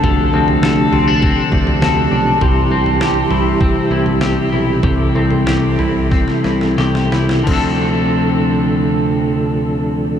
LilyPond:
<<
  \new Staff \with { instrumentName = "Clean electric guitar" } { \time 4/4 \key d \minor \tempo 4 = 96 <d c' d' a'>8 c'8 a'8 c'16 d'16 c'8 d'8 a'8 d'8 | <c g'>8 c'8 g'8 e'8 c'8 e'8 g'8 e'8 | <c g'>8 c'8 g'8 e'8 c'8 e'8 g'8 e'8 | <d f c' d' a'>1 | }
  \new Staff \with { instrumentName = "Tonewheel organ" } { \time 4/4 \key d \minor g'1 | g'1 | a'1 | <c f a d' a'>1 | }
  \new Staff \with { instrumentName = "Tonewheel organ" } { \clef bass \time 4/4 \key d \minor <c f a d'>1 | <c e g e'>1~ | <c e g e'>1 | r1 | }
  \new Staff \with { instrumentName = "Picked electric bass" } { \clef bass \time 4/4 \key d \minor d,8 d,8 d,8 d,8. r16 d,8 d,8 b,,8 | c,8 c,8 c,8 c,8. r16 c,8 c,8 b,,8 | c,8 c,8 c,8 c,8. r16 c,8 c,8 c,8 | d,1 | }
  \new DrumStaff \with { instrumentName = "Drums" } \drummode { \time 4/4 <bd tomfh>8. tomfh16 sn8 tomfh8 bd8 bd16 tomfh16 sn4 | <bd tomfh>8. tomfh16 sn8 tomfh8 bd8. tomfh16 sn4 | <bd tomfh>8. tomfh16 sn8 tomfh8 <bd sn>16 sn16 sn16 sn16 sn16 sn16 sn16 sn16 | <cymc bd>4 r4 r4 r4 | }
>>